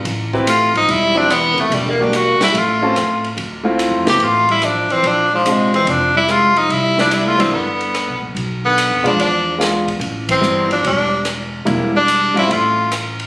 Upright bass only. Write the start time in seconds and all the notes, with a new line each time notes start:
0.05 A1
0.74 G#1
0.87 E1
1.70 E1
2.40 muted upright bass stroke
2.54 A1
2.96 A2
3.37 D2
3.91 F2
4.04 C#2
4.18 A1
4.89 muted upright bass stroke
5.03 A#1
5.85 F1
6.69 C2
7.52 G1
8.08 B1
8.21 A#1
8.35 B1
8.90 F2
9.03 B2
9.16 E2
10.00 A1
10.42 G1
10.83 E1
11.66 E1
12.35 G#1
12.49 A1